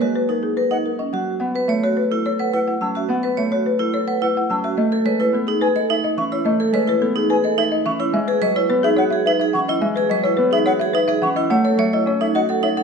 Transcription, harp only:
0.00 1.11 F#3 soft
0.00 1.43 G#3 medium
0.00 1.43 A#3 medium
1.13 2.80 F#3 medium
1.40 3.07 B3 medium
1.68 3.37 A3 medium
2.81 4.48 F#3 medium
3.08 5.31 B3 medium
3.38 4.76 A3 medium
4.50 4.80 F#3 medium
4.77 6.43 A3 medium
5.05 6.71 G#3 medium
5.33 7.00 B3 medium
6.17 7.84 E3 medium
6.45 8.16 A3 medium
6.73 8.12 G#3 medium
7.01 8.68 B3 medium
7.85 8.16 E3 medium
8.13 9.80 G#3 medium
8.41 10.09 F#3 medium
8.69 10.37 B3 medium
9.54 11.20 E3 medium
9.81 11.52 G#3 medium
10.10 11.76 F#3 medium
10.38 11.53 B3 medium
11.22 11.52 E3 medium
11.50 12.83 A3 medium
11.77 12.83 F#3 medium
12.06 12.83 C#4 medium

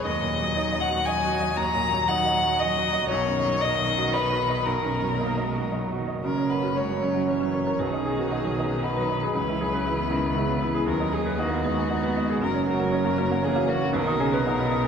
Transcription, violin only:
0.05 0.82 D#5 medium
0.80 1.07 F#5 medium
1.05 1.58 G#5 medium
1.57 2.10 A#5 medium
2.08 2.61 F#5 medium
2.59 3.09 D#5 medium
3.09 3.63 C#5 medium
3.61 4.15 D#5 medium
4.13 4.67 B4 medium
4.65 5.71 A#4 medium
6.25 6.51 A#4 medium
6.50 6.79 B4 soft
6.77 7.28 C#5 soft
7.29 7.81 C#5 soft
7.80 8.85 G#4 medium
8.83 9.35 B4 medium
9.35 10.85 B4 medium
10.87 11.14 A#4 medium
11.13 11.41 G#4 medium
11.40 12.41 F#4 medium
12.42 12.67 A#4 medium
12.67 13.46 A#4 medium
13.44 13.70 G#4 medium
13.69 13.95 F#4 medium
13.96 14.88 A#4 medium

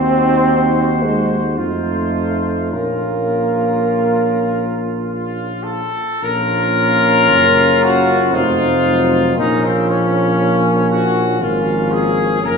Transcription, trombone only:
0.00 1.04 C4 loud
1.03 1.39 G#3 medium
1.59 2.75 A3 medium
2.73 5.64 A#3 medium
6.23 8.35 A#3 medium
8.33 8.85 A3 medium
8.87 9.40 F#3 medium
9.39 11.41 F3 medium
11.42 12.42 F3 medium
12.45 12.57 F3 medium

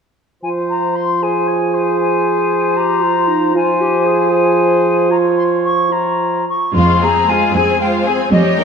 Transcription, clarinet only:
0.43 1.18 F4 soft
1.22 2.79 G#4 soft
2.77 3.03 G4 soft
3.02 3.29 F4 soft
3.28 3.54 D#4 soft
3.54 3.82 F4 medium
3.81 4.07 G4 soft
4.05 4.30 G#4 medium
4.31 5.12 G#4 soft
5.10 5.90 F4 soft
5.91 6.46 F4 soft

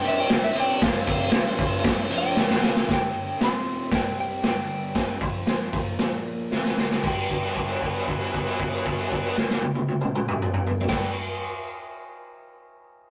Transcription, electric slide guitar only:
0.08 0.19 E5 medium
0.20 0.31 G5 medium
0.33 0.44 G5 medium
0.44 0.56 E5 loud
0.60 0.83 G5 medium
0.84 2.34 F5 loud
2.18 2.69 G5 loud
2.69 2.88 F5 loud
2.93 3.39 G5 medium
3.44 3.95 C6 loud
3.95 4.19 G5 medium
4.20 4.43 G5 medium
4.48 6.50 G5 medium
7.07 10.82 G5 medium
10.89 11.11 G5 medium

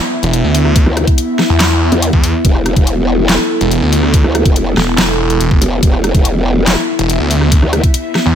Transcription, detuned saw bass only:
0.23 0.42 E1 loud
0.44 0.85 D2 loud
1.50 1.90 E2 loud
2.13 2.33 E2 loud
3.61 3.80 E1 loud
3.82 4.23 D2 medium
4.77 4.97 E1 medium
4.98 5.39 E1 loud
5.40 5.60 E1 loud
6.99 7.18 E1 loud
7.20 7.61 D2 loud
8.26 8.35 E2 loud

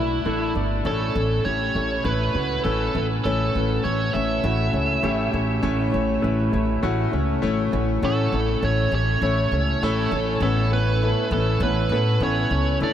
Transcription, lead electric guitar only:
0.00 0.54 E4 medium
0.87 1.48 A4 medium
1.45 2.05 C#5 medium
2.05 2.61 B4 medium
2.64 3.06 A4 medium
3.24 3.86 A4 medium
3.84 4.15 C#5 medium
4.13 5.30 E5 medium
8.05 8.66 A4 medium
8.65 8.94 C#5 medium
8.95 10.10 C#5 medium
9.84 10.42 A4 medium
10.43 10.70 A4 medium
10.73 11.29 B4 loud
11.33 11.60 A4 medium
11.63 12.23 B4 medium
12.23 12.78 C#5 medium
12.84 12.93 D5 loud

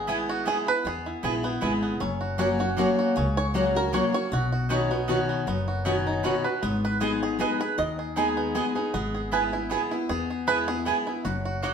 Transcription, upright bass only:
0.00 0.50 G#1 medium
0.85 1.12 E2 medium
1.24 1.56 A#1 medium
1.63 1.95 G#1 medium
2.01 2.82 F#1 medium
3.17 3.98 C#2 medium
4.32 5.13 B1 medium
5.47 6.28 F#1 medium
6.63 7.44 G#1 medium
7.78 8.59 D#2 medium
8.94 9.75 G#1 medium
10.09 10.90 E2 medium
11.25 11.74 F#1 medium

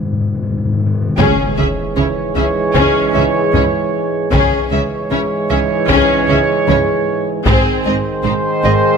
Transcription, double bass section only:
1.18 1.26 C#2 medium
1.58 1.66 C#2 soft
1.97 2.05 C#2 soft
2.36 2.44 C#2 soft
2.75 2.83 C#2 medium
3.15 3.23 C#2 soft
3.54 3.62 C#2 medium
4.32 4.40 C#2 medium
4.72 4.80 C#2 medium
5.11 5.19 C#2 medium
5.50 5.58 C#2 soft
5.89 5.97 C#2 medium
6.29 6.37 C#2 medium
6.68 6.76 C#2 medium
7.47 7.55 G#1 medium
7.85 7.93 G#1 medium
8.25 8.33 G#1 medium
8.64 8.72 G#1 medium

